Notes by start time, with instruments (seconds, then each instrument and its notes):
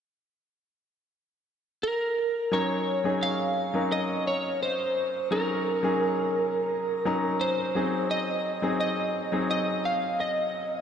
1.83 lead electric guitar A#4
2.51 grand piano F#3 C#4 D#4 A#4, lead electric guitar C#5
3.04 grand piano F#3 C#4 D#4 G#4
3.23 lead electric guitar F5
3.74 grand piano F#3 C#4 D#4 A#4
3.92 lead electric guitar D#5
4.27 lead electric guitar C#5
4.62 lead electric guitar C5
5.31 grand piano F#3 C#4 D#4 A#4, lead electric guitar A#4
5.83 grand piano F#3 C#4 D#4 G#4
7.05 grand piano F#3 C#4 D#4 A#4
7.41 lead electric guitar C5
7.75 grand piano F#3 C4 D#4 G#4
8.11 lead electric guitar D#5
8.62 grand piano F#3 C4 D#4 G#4
8.80 lead electric guitar D#5
9.32 grand piano F#3 C4 D#4 G#4
9.51 lead electric guitar D#5
9.85 lead electric guitar F5
10.20 lead electric guitar D#5